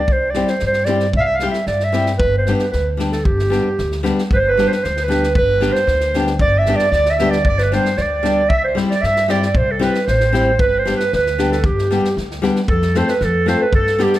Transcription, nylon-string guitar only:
0.35 G3 C4 E4 G4
0.87 G3 C4 E4 G4
1.42 G3 C4 E4 G4
1.92 G3 C4 E4 G4
2.47 G3 B3 D4 G4
2.97 G3 B3 D4 G4
3.50 G3 B3 D4 G4
4.03 G3 B3 D4 G4
4.57 G3 B3 D4 G4
5.08 G3 B3 D4 G4
5.61 G3 B3 D4 G4
6.14 G3 B3 D4 G4
6.67 G3 B3 D4 G4
7.19 G3 B3 D4 G4
7.72 G3 B3 D4 G4
8.23 G3 B3 D4 G4
8.75 G3 C4 E4 G4
9.28 G3 C4 E4 G4
9.79 G3 C4 E4 G4
10.32 G3 C4 E4 G4
10.85 G3 B3 D4 G4
11.38 G3 B3 D4 G4
11.91 G3 B3 D4 G4
12.42 G3 B3 D4 G4
12.95 A3 C4 F4 A4
13.46 A3 C4 F4 A4
13.98 G3 B3 D4 G4

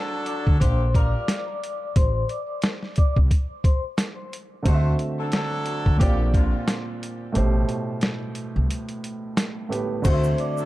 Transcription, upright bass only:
0.47 D2
0.62 A#1
1.96 A1
3.17 C2
4.66 D2
5.86 D2
6.01 A#1
7.36 A1
8.56 C2
10.05 D2

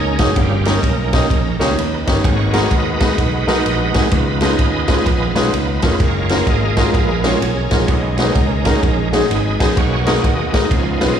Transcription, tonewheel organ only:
Already playing: C#4 D#4 G#4 A#4
0.20 G#4
0.36 G3 A#3 C#4 F4 G4
0.67 C#4 D#4 A#4
1.59 G3 C#4 F4
1.77 D#4 B4
2.24 G#3 B3 F#4 A#4 C#5
2.71 F#4 B4 D#5
3.18 D#4 F#4 B4
3.47 F#4 B4 D#5
3.95 C#5
4.12 B3 D#4 F4 B4
4.42 G#4 B4 D#5
5.53 D#4 F4 B4
6.00 G#3 A#3 F4 A#4 C#5
6.46 G#4 A#4 D#5
6.94 F4 G#4 B4
7.23 G#3 A#3 C#4 F4 A#4
7.71 G#4
7.87 G#3 C#4 D#4 F#4
8.19 C#4 D#4 A#4
9.30 D#4 G#4 B4
9.76 A#3 B3 F#4 G#4 C#5
10.24 F#4 G#4 D#5
10.70 F3 B3 D#4 F4 G#4 C#5
11.00 B3 F4 G#4

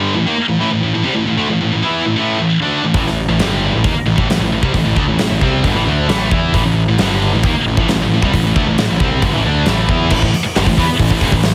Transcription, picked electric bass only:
2.94 A1
3.06 A1
3.28 A1
3.39 G1
3.74 A1
3.84 D#2
3.95 muted picked electric bass stroke
4.06 A1
4.18 A1
4.29 A1
4.39 A1
4.52 A1
4.63 C2
4.74 A1
4.85 A1
4.96 D2
5.08 A1
5.19 A1
5.30 A1
5.42 C2
5.65 G1
5.76 A1
5.87 D2
6.08 A1
6.32 E2
6.54 A1
6.65 A1
6.88 A1
7.00 G1
7.33 A1
7.44 D#2
7.54 muted picked electric bass stroke
7.65 A1
7.77 A1
7.88 A1
7.99 A1
8.09 A1
8.23 C2
8.34 A1
8.43 A1
8.56 D2
8.66 A1
8.78 A1
8.90 A1
9.00 C2
9.22 G1
9.33 A1
9.46 D2
9.67 A1
9.88 E2
10.11 A1
10.22 A1
10.35 muted picked electric bass stroke
10.46 muted picked electric bass stroke
10.56 G1
10.67 A1
10.78 E2
10.89 muted picked electric bass stroke
11.00 A1
11.11 A1
11.21 G1
11.33 A1

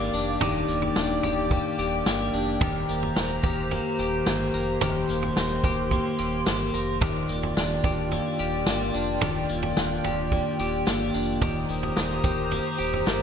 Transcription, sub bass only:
Already playing: G1
0.13 F1
0.41 D#1
0.68 D#1
0.96 D#1
1.23 D1
1.78 D#1
2.06 G1
2.33 F1
2.61 D#1
2.89 D#1
3.16 D#1
3.43 D1
3.99 D#1
4.26 G1
4.54 F1
4.81 D#1
5.09 D#1
5.36 D#1
5.64 D1
6.19 D#1
6.47 G1
6.74 F1
7.01 D#1
7.29 D#1
7.56 D#1
7.84 D1
8.39 D#1
8.67 G1
8.94 F1
9.22 D#1
9.50 D#1
9.77 D#1
10.05 D1
10.59 D#1
10.87 G1
11.14 F1
11.42 D#1
11.69 D#1
11.97 D#1
12.24 D1
12.79 D#1
13.07 G1

